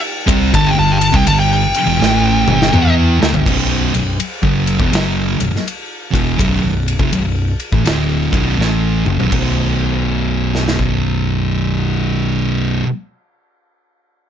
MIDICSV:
0, 0, Header, 1, 7, 480
1, 0, Start_track
1, 0, Tempo, 732601
1, 351, Time_signature, 4, 2, 24, 8
1, 9366, End_track
2, 0, Start_track
2, 0, Title_t, "Lead electric guitar"
2, 0, Program_c, 0, 29
2, 359, Note_on_c, 0, 81, 113
2, 437, Note_on_c, 0, 79, 82
2, 455, Note_off_c, 0, 81, 0
2, 500, Note_off_c, 0, 79, 0
2, 517, Note_on_c, 0, 81, 87
2, 602, Note_on_c, 0, 79, 88
2, 640, Note_off_c, 0, 79, 0
2, 658, Note_off_c, 0, 81, 0
2, 678, Note_on_c, 0, 81, 91
2, 760, Note_off_c, 0, 81, 0
2, 760, Note_on_c, 0, 79, 84
2, 821, Note_off_c, 0, 79, 0
2, 838, Note_on_c, 0, 81, 89
2, 911, Note_off_c, 0, 81, 0
2, 914, Note_on_c, 0, 79, 85
2, 978, Note_off_c, 0, 79, 0
2, 1003, Note_on_c, 0, 79, 122
2, 1926, Note_off_c, 0, 79, 0
2, 9366, End_track
3, 0, Start_track
3, 0, Title_t, "Distorted electric guitar"
3, 0, Program_c, 1, 30
3, 174, Note_on_c, 1, 60, 117
3, 175, Note_on_c, 1, 48, 114
3, 176, Note_on_c, 1, 55, 107
3, 342, Note_off_c, 1, 60, 0
3, 342, Note_on_c, 1, 43, 90
3, 343, Note_off_c, 1, 48, 0
3, 343, Note_off_c, 1, 55, 0
3, 346, Note_on_c, 1, 50, 109
3, 490, Note_off_c, 1, 43, 0
3, 493, Note_off_c, 1, 50, 0
3, 498, Note_on_c, 1, 43, 74
3, 504, Note_on_c, 1, 50, 74
3, 707, Note_off_c, 1, 43, 0
3, 710, Note_off_c, 1, 50, 0
3, 737, Note_on_c, 1, 48, 95
3, 741, Note_on_c, 1, 55, 98
3, 815, Note_off_c, 1, 48, 0
3, 817, Note_on_c, 1, 43, 69
3, 818, Note_on_c, 1, 50, 78
3, 822, Note_off_c, 1, 55, 0
3, 1070, Note_off_c, 1, 43, 0
3, 1070, Note_off_c, 1, 50, 0
3, 1216, Note_on_c, 1, 40, 91
3, 1223, Note_on_c, 1, 47, 104
3, 1297, Note_off_c, 1, 40, 0
3, 1300, Note_on_c, 1, 45, 92
3, 1302, Note_off_c, 1, 47, 0
3, 1302, Note_on_c, 1, 57, 105
3, 1304, Note_on_c, 1, 52, 107
3, 1603, Note_off_c, 1, 45, 0
3, 1604, Note_off_c, 1, 57, 0
3, 1605, Note_off_c, 1, 52, 0
3, 1611, Note_on_c, 1, 50, 109
3, 1612, Note_on_c, 1, 43, 104
3, 1614, Note_on_c, 1, 55, 100
3, 1778, Note_off_c, 1, 50, 0
3, 1779, Note_off_c, 1, 43, 0
3, 1779, Note_off_c, 1, 55, 0
3, 1782, Note_on_c, 1, 52, 93
3, 1785, Note_on_c, 1, 64, 104
3, 1787, Note_on_c, 1, 59, 109
3, 2083, Note_off_c, 1, 52, 0
3, 2085, Note_off_c, 1, 64, 0
3, 2086, Note_off_c, 1, 59, 0
3, 2087, Note_on_c, 1, 50, 103
3, 2094, Note_on_c, 1, 57, 117
3, 2168, Note_off_c, 1, 50, 0
3, 2174, Note_off_c, 1, 57, 0
3, 2174, Note_on_c, 1, 43, 98
3, 2176, Note_on_c, 1, 50, 99
3, 2256, Note_off_c, 1, 43, 0
3, 2258, Note_off_c, 1, 50, 0
3, 2266, Note_on_c, 1, 35, 82
3, 2267, Note_on_c, 1, 47, 104
3, 2268, Note_on_c, 1, 42, 96
3, 2565, Note_off_c, 1, 35, 0
3, 2565, Note_off_c, 1, 47, 0
3, 2566, Note_off_c, 1, 42, 0
3, 2577, Note_on_c, 1, 35, 68
3, 2581, Note_on_c, 1, 42, 71
3, 2711, Note_off_c, 1, 35, 0
3, 2713, Note_off_c, 1, 42, 0
3, 2897, Note_on_c, 1, 42, 86
3, 2903, Note_on_c, 1, 49, 92
3, 2905, Note_on_c, 1, 54, 101
3, 3132, Note_off_c, 1, 42, 0
3, 3135, Note_off_c, 1, 49, 0
3, 3136, Note_off_c, 1, 54, 0
3, 3141, Note_on_c, 1, 40, 88
3, 3147, Note_on_c, 1, 47, 88
3, 3219, Note_off_c, 1, 40, 0
3, 3222, Note_off_c, 1, 47, 0
3, 3228, Note_on_c, 1, 42, 89
3, 3228, Note_on_c, 1, 54, 103
3, 3232, Note_on_c, 1, 49, 99
3, 3525, Note_off_c, 1, 42, 0
3, 3525, Note_off_c, 1, 54, 0
3, 3527, Note_off_c, 1, 49, 0
3, 3539, Note_on_c, 1, 35, 60
3, 3539, Note_on_c, 1, 42, 73
3, 3620, Note_off_c, 1, 35, 0
3, 3620, Note_off_c, 1, 42, 0
3, 4019, Note_on_c, 1, 40, 98
3, 4023, Note_on_c, 1, 52, 94
3, 4024, Note_on_c, 1, 47, 100
3, 4180, Note_off_c, 1, 40, 0
3, 4182, Note_off_c, 1, 52, 0
3, 4183, Note_off_c, 1, 47, 0
3, 4186, Note_on_c, 1, 35, 102
3, 4188, Note_on_c, 1, 42, 110
3, 4329, Note_off_c, 1, 35, 0
3, 4330, Note_off_c, 1, 42, 0
3, 4348, Note_on_c, 1, 35, 59
3, 4349, Note_on_c, 1, 42, 79
3, 4548, Note_off_c, 1, 35, 0
3, 4549, Note_off_c, 1, 42, 0
3, 4585, Note_on_c, 1, 41, 84
3, 4585, Note_on_c, 1, 48, 96
3, 4661, Note_off_c, 1, 41, 0
3, 4661, Note_off_c, 1, 48, 0
3, 4669, Note_on_c, 1, 35, 63
3, 4673, Note_on_c, 1, 42, 74
3, 4913, Note_off_c, 1, 35, 0
3, 4915, Note_off_c, 1, 42, 0
3, 5060, Note_on_c, 1, 45, 81
3, 5062, Note_on_c, 1, 52, 90
3, 5132, Note_off_c, 1, 45, 0
3, 5138, Note_off_c, 1, 52, 0
3, 5138, Note_on_c, 1, 38, 89
3, 5140, Note_on_c, 1, 45, 90
3, 5141, Note_on_c, 1, 50, 100
3, 5440, Note_off_c, 1, 38, 0
3, 5441, Note_off_c, 1, 45, 0
3, 5442, Note_off_c, 1, 50, 0
3, 5450, Note_on_c, 1, 42, 91
3, 5452, Note_on_c, 1, 35, 87
3, 5459, Note_on_c, 1, 47, 93
3, 5616, Note_off_c, 1, 42, 0
3, 5617, Note_off_c, 1, 35, 0
3, 5620, Note_off_c, 1, 47, 0
3, 5621, Note_on_c, 1, 45, 88
3, 5623, Note_on_c, 1, 52, 82
3, 5624, Note_on_c, 1, 57, 93
3, 5922, Note_off_c, 1, 45, 0
3, 5923, Note_off_c, 1, 52, 0
3, 5924, Note_off_c, 1, 57, 0
3, 5932, Note_on_c, 1, 49, 93
3, 5933, Note_on_c, 1, 42, 93
3, 6012, Note_off_c, 1, 42, 0
3, 6012, Note_off_c, 1, 49, 0
3, 6025, Note_on_c, 1, 35, 80
3, 6028, Note_on_c, 1, 42, 102
3, 6088, Note_off_c, 1, 35, 0
3, 6096, Note_on_c, 1, 35, 79
3, 6100, Note_off_c, 1, 42, 0
3, 6108, Note_on_c, 1, 42, 92
3, 6119, Note_on_c, 1, 47, 91
3, 8399, Note_off_c, 1, 35, 0
3, 8412, Note_off_c, 1, 42, 0
3, 8423, Note_off_c, 1, 47, 0
3, 9366, End_track
4, 0, Start_track
4, 0, Title_t, "Fingered electric bass"
4, 0, Program_c, 2, 33
4, 183, Note_on_c, 2, 36, 99
4, 340, Note_off_c, 2, 36, 0
4, 353, Note_on_c, 2, 31, 105
4, 496, Note_off_c, 2, 31, 0
4, 516, Note_on_c, 2, 31, 89
4, 733, Note_off_c, 2, 31, 0
4, 744, Note_on_c, 2, 36, 104
4, 823, Note_off_c, 2, 36, 0
4, 833, Note_on_c, 2, 31, 86
4, 1118, Note_off_c, 2, 31, 0
4, 1222, Note_on_c, 2, 28, 89
4, 1301, Note_off_c, 2, 28, 0
4, 1309, Note_on_c, 2, 33, 98
4, 1595, Note_off_c, 2, 33, 0
4, 1616, Note_on_c, 2, 31, 92
4, 1774, Note_off_c, 2, 31, 0
4, 1796, Note_on_c, 2, 40, 107
4, 2078, Note_off_c, 2, 40, 0
4, 2105, Note_on_c, 2, 38, 96
4, 2179, Note_off_c, 2, 38, 0
4, 2187, Note_on_c, 2, 31, 101
4, 2262, Note_off_c, 2, 31, 0
4, 2270, Note_on_c, 2, 23, 102
4, 2555, Note_off_c, 2, 23, 0
4, 2585, Note_on_c, 2, 23, 78
4, 2738, Note_off_c, 2, 23, 0
4, 2901, Note_on_c, 2, 30, 100
4, 3122, Note_off_c, 2, 30, 0
4, 3145, Note_on_c, 2, 28, 92
4, 3220, Note_off_c, 2, 28, 0
4, 3225, Note_on_c, 2, 30, 92
4, 3511, Note_off_c, 2, 30, 0
4, 3535, Note_on_c, 2, 23, 77
4, 3612, Note_off_c, 2, 23, 0
4, 4021, Note_on_c, 2, 28, 92
4, 4175, Note_off_c, 2, 28, 0
4, 4188, Note_on_c, 2, 23, 94
4, 4329, Note_off_c, 2, 23, 0
4, 4346, Note_on_c, 2, 23, 85
4, 4564, Note_off_c, 2, 23, 0
4, 4582, Note_on_c, 2, 29, 88
4, 4658, Note_off_c, 2, 29, 0
4, 4669, Note_on_c, 2, 23, 84
4, 4953, Note_off_c, 2, 23, 0
4, 5061, Note_on_c, 2, 33, 78
4, 5138, Note_off_c, 2, 33, 0
4, 5141, Note_on_c, 2, 26, 96
4, 5429, Note_off_c, 2, 26, 0
4, 5456, Note_on_c, 2, 23, 85
4, 5612, Note_off_c, 2, 23, 0
4, 5622, Note_on_c, 2, 33, 90
4, 5910, Note_off_c, 2, 33, 0
4, 5939, Note_on_c, 2, 30, 79
4, 6015, Note_off_c, 2, 30, 0
4, 6028, Note_on_c, 2, 23, 94
4, 6102, Note_off_c, 2, 23, 0
4, 6109, Note_on_c, 2, 23, 93
4, 8386, Note_off_c, 2, 23, 0
4, 9366, End_track
5, 0, Start_track
5, 0, Title_t, "Muted distorted electric guitar strokes"
5, 3632, Note_on_c, 9, 29, 55
5, 3698, Note_off_c, 9, 29, 0
5, 9366, End_track
6, 0, Start_track
6, 0, Title_t, "Muted fingered electric bass strokes"
6, 3625, Note_on_c, 9, 29, 39
6, 3690, Note_off_c, 9, 29, 0
6, 9366, End_track
7, 0, Start_track
7, 0, Title_t, "Drums"
7, 184, Note_on_c, 9, 36, 125
7, 188, Note_on_c, 9, 51, 89
7, 249, Note_off_c, 9, 36, 0
7, 254, Note_off_c, 9, 51, 0
7, 353, Note_on_c, 9, 36, 114
7, 353, Note_on_c, 9, 51, 112
7, 419, Note_off_c, 9, 36, 0
7, 419, Note_off_c, 9, 51, 0
7, 663, Note_on_c, 9, 51, 83
7, 729, Note_off_c, 9, 51, 0
7, 746, Note_on_c, 9, 36, 127
7, 811, Note_off_c, 9, 36, 0
7, 831, Note_on_c, 9, 51, 110
7, 896, Note_off_c, 9, 51, 0
7, 1143, Note_on_c, 9, 51, 72
7, 1208, Note_off_c, 9, 51, 0
7, 1326, Note_on_c, 9, 38, 69
7, 1392, Note_off_c, 9, 38, 0
7, 1623, Note_on_c, 9, 47, 88
7, 1688, Note_off_c, 9, 47, 0
7, 1717, Note_on_c, 9, 38, 83
7, 1783, Note_off_c, 9, 38, 0
7, 1793, Note_on_c, 9, 45, 97
7, 1859, Note_off_c, 9, 45, 0
7, 2114, Note_on_c, 9, 38, 107
7, 2180, Note_off_c, 9, 38, 0
7, 2189, Note_on_c, 9, 43, 107
7, 2254, Note_off_c, 9, 43, 0
7, 2269, Note_on_c, 9, 36, 110
7, 2275, Note_on_c, 9, 49, 106
7, 2335, Note_off_c, 9, 36, 0
7, 2340, Note_off_c, 9, 49, 0
7, 2584, Note_on_c, 9, 51, 77
7, 2649, Note_off_c, 9, 51, 0
7, 2750, Note_on_c, 9, 51, 102
7, 2816, Note_off_c, 9, 51, 0
7, 2903, Note_on_c, 9, 36, 102
7, 2968, Note_off_c, 9, 36, 0
7, 3061, Note_on_c, 9, 51, 71
7, 3127, Note_off_c, 9, 51, 0
7, 3142, Note_on_c, 9, 36, 113
7, 3208, Note_off_c, 9, 36, 0
7, 3232, Note_on_c, 9, 51, 88
7, 3245, Note_on_c, 9, 38, 108
7, 3298, Note_off_c, 9, 51, 0
7, 3310, Note_off_c, 9, 38, 0
7, 3540, Note_on_c, 9, 51, 76
7, 3606, Note_off_c, 9, 51, 0
7, 3642, Note_on_c, 9, 38, 32
7, 3708, Note_off_c, 9, 38, 0
7, 3719, Note_on_c, 9, 51, 94
7, 3784, Note_off_c, 9, 51, 0
7, 4020, Note_on_c, 9, 36, 108
7, 4029, Note_on_c, 9, 51, 74
7, 4086, Note_off_c, 9, 36, 0
7, 4094, Note_off_c, 9, 51, 0
7, 4189, Note_on_c, 9, 36, 106
7, 4195, Note_on_c, 9, 51, 87
7, 4255, Note_off_c, 9, 36, 0
7, 4261, Note_off_c, 9, 51, 0
7, 4507, Note_on_c, 9, 51, 67
7, 4572, Note_off_c, 9, 51, 0
7, 4584, Note_on_c, 9, 36, 112
7, 4649, Note_off_c, 9, 36, 0
7, 4669, Note_on_c, 9, 51, 91
7, 4735, Note_off_c, 9, 51, 0
7, 4977, Note_on_c, 9, 51, 61
7, 5043, Note_off_c, 9, 51, 0
7, 5061, Note_on_c, 9, 36, 102
7, 5127, Note_off_c, 9, 36, 0
7, 5146, Note_on_c, 9, 51, 78
7, 5159, Note_on_c, 9, 38, 109
7, 5212, Note_off_c, 9, 51, 0
7, 5224, Note_off_c, 9, 38, 0
7, 5457, Note_on_c, 9, 36, 105
7, 5463, Note_on_c, 9, 51, 69
7, 5522, Note_off_c, 9, 36, 0
7, 5528, Note_off_c, 9, 51, 0
7, 5643, Note_on_c, 9, 38, 57
7, 5709, Note_off_c, 9, 38, 0
7, 5938, Note_on_c, 9, 45, 86
7, 6004, Note_off_c, 9, 45, 0
7, 6027, Note_on_c, 9, 43, 80
7, 6092, Note_off_c, 9, 43, 0
7, 6107, Note_on_c, 9, 36, 102
7, 6107, Note_on_c, 9, 49, 87
7, 6173, Note_off_c, 9, 36, 0
7, 6173, Note_off_c, 9, 49, 0
7, 6912, Note_on_c, 9, 38, 54
7, 6977, Note_off_c, 9, 38, 0
7, 6997, Note_on_c, 9, 38, 73
7, 7063, Note_off_c, 9, 38, 0
7, 7069, Note_on_c, 9, 36, 80
7, 7135, Note_off_c, 9, 36, 0
7, 9366, End_track
0, 0, End_of_file